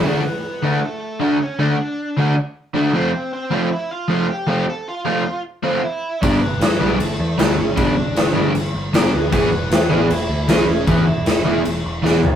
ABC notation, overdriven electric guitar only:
X:1
M:4/4
L:1/8
Q:1/4=155
K:Dlyd
V:1 name="Overdriven electric guitar"
[D,A,DF] z2 [D,A,DF] z2 [D,A,DF] z | [D,A,DF] z2 [D,A,DF] z2 [D,A,DF] [=F,A,=C=F] | z2 [=F,A,=C=F] z2 [F,A,CF] z [F,A,CF] | z2 [=F,A,=C=F] z2 [F,A,CF] z2 |
[=G,B,D=G] z2 [G,B,DG] z2 [G,B,DG] z | [=G,B,D=G] z2 [G,B,DG] z2 [G,B,DG] z | [E,B,EG] z2 [E,B,EG] z2 [E,B,EG] z | [E,B,EG] z2 [E,B,EG] z2 [E,B,EG] z |]